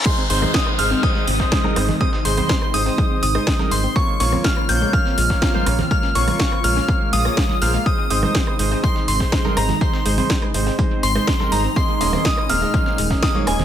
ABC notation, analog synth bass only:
X:1
M:4/4
L:1/8
Q:1/4=123
K:Ab
V:1 name="Analog synth bass" clef=bass
z A,,, z A,,, z A,,, z A,,, | z A,,, z A,,, z A,,, z A,,, | z B,,, z B,,, z B,,, z B,,, | z B,,, z B,,, z B,,, z B,,, |
z A,,, z A,,, z A,,, z A,,, | z A,,, z A,,, z A,,, z A,,, | z E,,, z E,,, z E,,, z E,,, |]